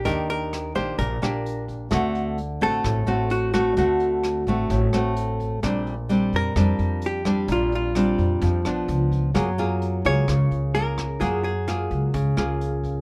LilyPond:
<<
  \new Staff \with { instrumentName = "Hollow-body jazz guitar" } { \time 4/4 \key d \phrygian \tempo 4 = 129 bes'8 bes'4 c''8 bes'4. r8 | r4. a'4. fis'8 fis'8~ | fis'2. r4 | r4. bes'4. g'4 |
f'8 f'2. r8 | r4. des''4. bes'4 | aes'8 aes'2. r8 | }
  \new Staff \with { instrumentName = "Nylon-string guitar" } { \time 4/4 \key d \phrygian << { <bes d' g'>4. <bes d' g'>4 <bes d' g'>4. | <a c' fis'>4 r8 <a c' fis'>4 <a c' fis'>4 <a c' fis'>8 | <a c' fis'>4. <a c' fis'>4 <a c' fis'>4. | <g c' d'>8 r8 <g c' d'>4 <g c' d'>4. <g c' d'>8~ |
<g c' d'>4 <g c' d'>4. <f ces' d'>4. | <bes f' aes'>8 <bes f' aes'>4 <bes f' aes'>4. <bes f' aes'>8 r8 | <bes f' aes'>8 r8 <bes f' aes'>4 r8 <bes f' aes'>4. | } \\ { ees2 bes,2 | d2 a,2 | d2 a,2 | bes,2 f2 |
bes,2 f4 r4 | ges2 des2 | ges2 des2 | } >> }
  \new Staff \with { instrumentName = "Upright bass" } { \clef bass \time 4/4 \key d \phrygian ees,4. bes,,8 bes,,8 bes,,4. | d,4. a,,8 a,,8 a,,4. | d,4. a,,8 a,,8 r4. | bes,,4. f,8 f,8 f,4. |
bes,,4. f,8 f,8 bes,,8 des,4 | ges,4. des,8 des,8 des,4. | ges,4. des,8 des,8 des,4. | }
  \new DrumStaff \with { instrumentName = "Drums" } \drummode { \time 4/4 <hh bd>8 hh8 <hh ss>8 <hh bd>8 <hh bd>8 <hh ss>8 hh8 <hh bd>8 | <hh bd ss>8 hh8 hh8 <hh bd>8 <hh bd ss>8 hh8 hh8 <hh bd ss>8 | <hh bd>8 hh8 <hh ss>8 <hh bd>8 <hh bd>8 <hh ss>8 hh8 <hh bd>8 | <hh bd ss>8 hh8 hh8 <hh bd>8 <hh bd ss>8 hh8 hh8 <hh bd ss>8 |
<hh bd>8 hh8 <hh ss>8 <hh bd>8 <hh bd>8 <hh ss>8 hh8 <hh bd>8 | <hh bd ss>8 hh8 hh8 <hh bd>8 <hh bd ss>8 hh8 hh8 <hh bd ss>8 | <hh bd>8 hh8 <hh ss>8 <hh bd>8 <hh bd>8 <hh ss>8 hh8 <hh bd>8 | }
>>